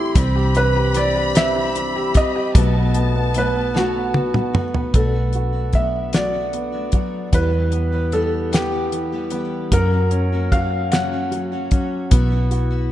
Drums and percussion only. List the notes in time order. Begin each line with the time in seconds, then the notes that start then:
0.15 kick, closed hi-hat
0.55 closed hi-hat
0.94 closed hi-hat
1.35 snare, closed hi-hat
1.75 closed hi-hat
2.14 kick, closed hi-hat
2.55 kick, closed hi-hat
2.94 closed hi-hat
3.34 closed hi-hat
3.76 snare
4.14 high tom
4.34 mid tom
4.55 mid tom
4.74 floor tom
4.94 kick, closed hi-hat
5.33 closed hi-hat
5.73 kick, closed hi-hat
6.13 snare, closed hi-hat
6.53 closed hi-hat
6.92 kick, closed hi-hat
7.33 kick, closed hi-hat
7.72 closed hi-hat
8.12 closed hi-hat
8.53 snare, closed hi-hat
8.92 closed hi-hat
9.30 closed hi-hat
9.72 kick, closed hi-hat
10.11 closed hi-hat
10.52 kick, closed hi-hat
10.92 snare, closed hi-hat
11.32 closed hi-hat
11.71 kick, closed hi-hat
12.11 kick, closed hi-hat
12.51 closed hi-hat